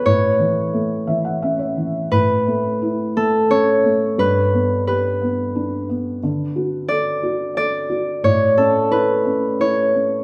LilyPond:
<<
  \new Staff \with { instrumentName = "Harp" } { \time 3/4 \key a \mixolydian \tempo 4 = 88 cis''4. r4. | b'4 r8 a'8 cis''4 | b'4 b'4. r8 | r4 d''4 d''4 |
cis''8 a'8 b'4 cis''8. r16 | }
  \new Staff \with { instrumentName = "Felt piano" } { \time 3/4 \key a \mixolydian << { r4. e''16 fis''16 e''16 cis''8. | r2. | r2. | r2. |
r2. | } \\ { a,8 e8 a8 e8 cis'8 e8 | a,8 a8 e'8 a8 cis'8 a8 | g,8 b8 g'8 b8 d'8 b8 | d8 fis'8 a'8 fis'8 a'8 fis'8 |
a,8 cis'8 e'8 cis'8 e'8 cis'8 | } >> }
>>